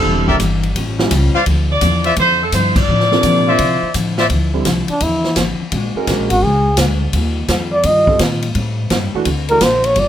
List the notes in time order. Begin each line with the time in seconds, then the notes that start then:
Already playing: D3 G3 C4 E4 A4
0.04 E1 E3 A#3 D4 G4
0.28 G4 A#4 D5 E5, kick
0.40 G1 E3 A#3 D4 G4, kick, hi-hat pedal, ride
0.63 ride
0.76 A1 A2 G3 C#4 F4, kick, ride
0.99 F3 G3 C#4 E4, snare
1.11 C#2 A2 G3 C#4 F4, kick, hi-hat pedal, ride
1.34 F4 C5 D5 F5, muted upright bass stroke
1.46 D2 D3 F3 C4 E4, kick, ride
1.71 D5
1.81 E2 D3 F3 C4 E4, kick, hi-hat pedal, ride
2.04 F4 C5 D5 E5, ride
2.16 F2 D3 F3 C4 C5, kick, ride
2.20 E4
2.43 A4
2.52 G2 D3 F3 C4 E4 C5, kick, hi-hat pedal, ride
2.76 D5, kick, crash
2.88 A2 D3 F3 C4 E4
3.00 snare
3.11 C3 F3 A#3 D4, snare
3.23 A#2 D3 F3 C4 E4, kick, hi-hat pedal, ride
3.47 F4 C5 D5 E5
3.59 C3 D3 F3 C4 E4, kick, ride
3.83 muted upright bass stroke
3.94 A2 D3 F3 C4 E4, kick, hi-hat pedal, ride
4.18 F4 C5 D5 E5, snare
4.30 D2 D3 F3 C4 E4, kick, ride
4.54 D3 G3 C4 E4
4.65 C2 D3 F3 C4 E4, kick, snare, hi-hat pedal, ride
4.88 D4, muted upright bass stroke, ride
5.00 E2 D3 F3 C4 E4, kick, ride
5.24 snare
5.36 A1 D3 F3 C4, kick, snare, hi-hat pedal, ride
5.40 E4
5.60 muted upright bass stroke
5.72 A#1 A#2 G#3 D4 F#4, kick, ride
5.95 G#3 C#4 F#4 A#4, muted upright bass stroke
6.07 B1 A#2 G#3 D4 F#4, kick, snare, hi-hat pedal, ride
6.19 A#1
6.30 G#1 F#4, ride
6.42 C#2 A#2 G#3 D4 F#4 G#4, kick
6.77 D2 A#2 G#3 D4 F#4, kick, snare, hi-hat pedal, ride
7.13 D#2 D#3 G3 C4 F4, kick, ride
7.48 F2 D#3 G3 C4 F4, kick, snare, hi-hat pedal, ride
7.73 D5
7.83 G2 D#3 G3 C4 F4 D#5, kick, ride
8.07 G3 C4 F4 A4, kick
8.19 A#2 D#3 G3 C4 F4, kick, snare, hi-hat pedal, ride
8.42 ride
8.55 A2 G3 C4 D#4, kick, ride
8.90 G2 A2 G3 C4 D#4, kick, snare, hi-hat pedal, ride
9.14 E3 A3 D4 F#4, muted upright bass stroke
9.25 D2 D3 C4 F#4 A#4, kick, ride
9.49 E3 A3 D4 F#4 A#4, ride
9.61 A#1 D3 C4 F#4 A#4 C5, kick, snare, hi-hat pedal, ride
9.84 C#5, ride
9.96 G1 G3 A#3 F4 A4 D5, kick, ride